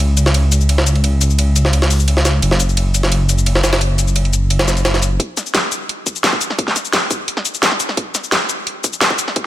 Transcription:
Already playing: detuned saw bass C#2
0.17 closed hi-hat, ride, cabasa
0.26 snare
0.34 closed hi-hat, ride
0.52 closed hi-hat, ride, cabasa
0.61 cabasa
0.69 closed hi-hat, ride
0.78 snare
0.87 closed hi-hat, ride, cabasa
0.95 ride
1.04 closed hi-hat, ride
1.21 closed hi-hat, ride, cabasa
1.30 cabasa
1.39 closed hi-hat, ride
1.56 closed hi-hat, ride, cabasa
1.65 snare
1.73 closed hi-hat, ride
1.82 snare
1.90 closed hi-hat, open hi-hat, cabasa
2.00 cabasa
2.08 closed hi-hat, ride
2.17 snare
2.25 snare, closed hi-hat, ride, cabasa
2.42 detuned saw bass F#1, closed hi-hat, ride
2.51 snare
2.60 closed hi-hat, ride, cabasa
2.69 cabasa
2.77 closed hi-hat, ride
2.94 closed hi-hat, ride, cabasa
3.03 snare
3.12 closed hi-hat, ride
3.29 closed hi-hat, ride, cabasa
3.38 cabasa
3.46 closed hi-hat, ride
3.55 snare
3.64 snare, closed hi-hat, ride, cabasa
3.73 snare, ride
3.81 closed hi-hat, ride
3.98 closed hi-hat, ride, cabasa
4.08 cabasa
4.16 closed hi-hat, ride
4.25 closed hi-hat
4.33 closed hi-hat, cabasa
4.50 closed hi-hat, ride
4.59 snare, closed hi-hat, ride
4.68 snare, closed hi-hat, cabasa
4.77 ride, cabasa
4.85 snare, closed hi-hat, ride
4.94 snare, closed hi-hat
5.02 closed hi-hat, ride, cabasa
5.20 kick, closed hi-hat
5.37 snare, closed hi-hat, cabasa
5.46 cabasa
5.54 snare, closed hi-hat
5.72 closed hi-hat, cabasa
5.89 closed hi-hat
6.06 kick, closed hi-hat, cabasa
6.16 cabasa
6.24 snare, closed hi-hat
6.33 kick
6.41 closed hi-hat, cabasa
6.50 snare
6.58 kick, closed hi-hat
6.68 snare
6.76 snare, closed hi-hat, cabasa
6.85 cabasa
6.93 snare, closed hi-hat
7.11 kick, closed hi-hat, cabasa
7.28 closed hi-hat
7.37 snare
7.45 closed hi-hat, cabasa
7.54 cabasa
7.63 snare, closed hi-hat
7.72 snare
7.80 closed hi-hat, cabasa
7.89 snare
7.97 kick, closed hi-hat
8.15 snare, closed hi-hat, cabasa
8.24 cabasa
8.32 snare, closed hi-hat
8.49 closed hi-hat, cabasa
8.67 closed hi-hat
8.84 kick, closed hi-hat, cabasa
8.93 cabasa
9.01 snare, closed hi-hat
9.10 kick
9.19 closed hi-hat, cabasa
9.28 snare
9.36 kick, closed hi-hat

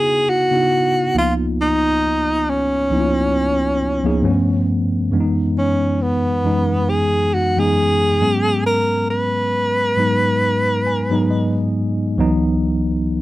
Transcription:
Already playing: tine electric piano C#3 B3 D#4 E4 F#4, tenor saxophone G#4
0.30 tenor saxophone F#4
0.51 tine electric piano C#3 B3 D#4 E4 F#4
1.14 tine electric piano C#2 F3 A#3 B3 D#4 F4, tenor saxophone F4
1.61 tenor saxophone D#4
2.50 tenor saxophone C#4
2.91 tine electric piano C#2 F3 A#3 B3 D#4 E4
3.00 tine electric piano F4
4.03 tine electric piano C#2 F3 A#3 B3 D#4 G#4
4.22 tine electric piano G2 F3 A3 B3 C#4
5.11 tine electric piano F#2 E3 G#3 B3 D4
5.20 tine electric piano D#4
5.58 tenor saxophone C#4
6.02 tenor saxophone B3
6.44 tine electric piano F#2 E3 G#3 B3 D#4
6.90 tenor saxophone G#4
7.34 tenor saxophone F#4
7.57 tine electric piano F#2 E3 G#3 B3 D#4, tenor saxophone G#4
8.20 tine electric piano G#2 F#3 G#3 B3 C#4
8.66 tenor saxophone A#4
9.10 tenor saxophone B4
9.97 tine electric piano G#2 F#3 G#3 B3 D#4
10.87 tine electric piano G#5
11.10 tine electric piano G#2 F#3 G#3 B3 D#4
11.30 tine electric piano D#5
12.18 tine electric piano C#2 E3 F#3 B3 D#4

